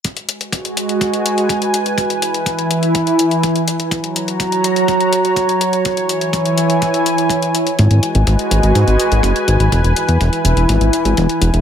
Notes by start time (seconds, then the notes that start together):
0.05 G#3 F#4 B4 G#5, kick, closed hi-hat
0.17 closed hi-hat
0.29 closed hi-hat
0.41 closed hi-hat
0.52 kick, closed hi-hat
0.65 closed hi-hat
0.77 closed hi-hat
0.89 closed hi-hat
1.01 kick, closed hi-hat
1.14 closed hi-hat
1.26 closed hi-hat
1.38 closed hi-hat
1.49 kick, closed hi-hat
1.62 closed hi-hat
1.74 closed hi-hat
1.86 closed hi-hat
1.98 E3 E4, kick, closed hi-hat
2.10 closed hi-hat
2.22 closed hi-hat
2.34 closed hi-hat
2.46 kick, closed hi-hat
2.59 closed hi-hat
2.71 closed hi-hat
2.83 closed hi-hat
2.95 kick, closed hi-hat
3.07 closed hi-hat
3.19 closed hi-hat
3.31 closed hi-hat
3.43 kick, closed hi-hat
3.56 closed hi-hat
3.68 closed hi-hat
3.80 closed hi-hat
3.91 F#3 F#4 C#5 A#5, kick, closed hi-hat
4.04 closed hi-hat
4.16 closed hi-hat
4.28 closed hi-hat
4.40 kick, closed hi-hat
4.52 closed hi-hat
4.64 closed hi-hat
4.76 closed hi-hat
4.88 kick, closed hi-hat
5.00 closed hi-hat
5.13 closed hi-hat
5.25 closed hi-hat
5.36 kick, closed hi-hat
5.49 closed hi-hat
5.61 closed hi-hat
5.73 closed hi-hat
5.85 E3 E4 G#5, kick, closed hi-hat
5.97 closed hi-hat
6.09 closed hi-hat
6.21 closed hi-hat
6.33 kick, closed hi-hat
6.46 closed hi-hat
6.58 closed hi-hat
6.70 closed hi-hat
6.82 kick, closed hi-hat
6.94 closed hi-hat
7.06 closed hi-hat
7.18 closed hi-hat
7.30 kick, closed hi-hat
7.42 closed hi-hat
7.55 closed hi-hat
7.67 closed hi-hat
7.78 G#1 G#3 F#4 B4 G#5, kick, closed hi-hat
7.91 G#1, closed hi-hat
8.03 closed hi-hat
8.15 G#1, closed hi-hat
8.27 G#1, kick, closed hi-hat
8.39 closed hi-hat
8.51 G#1, closed hi-hat
8.63 G#1, closed hi-hat
8.75 G#2, kick, closed hi-hat
8.87 G#1, closed hi-hat
9.00 closed hi-hat
9.12 G#1, closed hi-hat
9.23 F#1, kick, closed hi-hat
9.36 closed hi-hat
9.48 G#1, closed hi-hat
9.60 G#1, closed hi-hat
9.72 E1 E3 E4, kick, closed hi-hat
9.84 E1, closed hi-hat
9.96 closed hi-hat
10.08 E2, closed hi-hat
10.21 E1, kick, closed hi-hat
10.33 closed hi-hat
10.45 E1, closed hi-hat
10.57 E1, closed hi-hat
10.69 G#1, kick, closed hi-hat
10.81 G#1, closed hi-hat
10.93 closed hi-hat
11.05 G#1, closed hi-hat
11.17 E1, kick, closed hi-hat
11.29 closed hi-hat
11.41 E1, closed hi-hat
11.53 E1, closed hi-hat